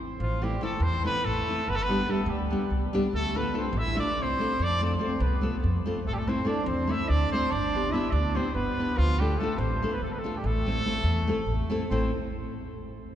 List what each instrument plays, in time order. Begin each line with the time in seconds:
0.20 upright bass A1, accordion F3, trumpet F4
0.42 nylon-string guitar E3 A3 C4 E4, accordion G3, trumpet G4
0.61 nylon-string guitar E3 A3 C4 E4, accordion A3, trumpet A4
0.80 upright bass E2, accordion C4, trumpet C5
1.04 nylon-string guitar E3 A3 C4 E4, accordion B3, trumpet B4
1.24 upright bass A1, accordion A3, trumpet A4
1.48 nylon-string guitar E3 A3 C4 E4
1.68 upright bass G1, accordion B3, trumpet B4
1.75 accordion A3, trumpet A4
1.82 accordion B3, trumpet B4
1.89 nylon-string guitar G3 B3 D4 G4
2.08 nylon-string guitar G3 B3 D4 G4, accordion A3, trumpet A4
2.26 upright bass D2, accordion G3, trumpet G4
2.50 nylon-string guitar G3 B3 D4 G4
2.70 upright bass C2
2.93 nylon-string guitar G3 B3 D4 G4
3.13 upright bass D2, accordion A3, trumpet A4
3.35 nylon-string guitar A3 D4 F4 A4, accordion B3, trumpet B4
3.54 nylon-string guitar A3 D4 F4 A4
3.58 accordion C4, trumpet C5
3.73 upright bass A1
3.78 accordion E4, trumpet E5
3.95 nylon-string guitar A3 D4 F4 A4, trumpet D5
4.02 accordion D4
4.17 upright bass C2, accordion C4
4.22 trumpet C5
4.39 nylon-string guitar A3 D4 F4 A4
4.59 upright bass F2, trumpet D5
4.65 accordion D4
4.81 nylon-string guitar A3 C4 F4 A4, trumpet D5
4.86 accordion D4
4.99 nylon-string guitar A3 C4 F4 A4
5.03 accordion C4, trumpet C5
5.20 upright bass C2, accordion B3, trumpet B4
5.41 nylon-string guitar A3 C4 F4 A4
5.64 upright bass F2
5.86 nylon-string guitar A3 C4 F4 A4
6.05 upright bass A1, accordion A3, trumpet A4
6.13 accordion G3, trumpet G4
6.18 accordion A3, trumpet A4
6.27 nylon-string guitar A3 C4 E4 A4, accordion C4, trumpet C5
6.45 nylon-string guitar A3 C4 E4 A4, accordion D4, trumpet D5
6.65 upright bass E2, accordion C4, trumpet C5
6.87 nylon-string guitar A3 C4 E4 A4, accordion E4, trumpet E5
7.08 upright bass D2, accordion D4, trumpet D5
7.32 nylon-string guitar A3 C4 E4 A4, accordion C4, trumpet C5
7.49 upright bass G1, accordion D4, trumpet D5
7.74 nylon-string guitar B3 D4 G4 B4
7.90 nylon-string guitar B3 D4, accordion E4, trumpet E5
7.94 nylon-string guitar G4 B4
8.11 upright bass D2, accordion D4, trumpet D5
8.35 nylon-string guitar B3 D4 G4 B4, accordion C4, trumpet C5
8.54 upright bass G1, accordion B3, trumpet B4
8.79 nylon-string guitar B3 D4 G4 B4
8.95 upright bass D2, accordion F3, trumpet F4
9.18 accordion G3, nylon-string guitar A3 D4 F4 A4, trumpet G4
9.37 accordion A3, nylon-string guitar A3, trumpet A4
9.41 nylon-string guitar D4 F4 A4
9.55 upright bass A1, accordion C4, trumpet C5
9.82 nylon-string guitar A3 D4 F4 A4
9.90 accordion B3, trumpet B4
10.01 upright bass D2, accordion A3, trumpet A4
10.10 accordion B3, trumpet B4
10.14 accordion A3
10.19 trumpet A4
10.24 nylon-string guitar A3 D4 F4 A4
10.34 accordion G3, trumpet G4
10.42 upright bass A1, accordion A3, trumpet A4
10.66 nylon-string guitar A3 C4 E4 A4
10.86 nylon-string guitar A3 C4 E4 A4
11.04 upright bass E2
11.27 nylon-string guitar A3 C4 E4 A4
11.46 upright bass A1
11.70 nylon-string guitar A3 C4 E4 A4
11.90 upright bass A1, nylon-string guitar A3 C4 E4 A4, accordion C4, trumpet C5